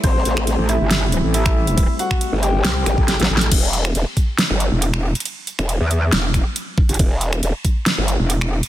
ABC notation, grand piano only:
X:1
M:4/4
L:1/8
Q:"Swing 16ths" 1/4=138
K:Ador
V:1 name="Grand piano"
[Cc]3 [Ee]3 [Ee]2- | [Ee] [Ff] z [Gg]4- [Gg] | z8 | z8 |
z8 |]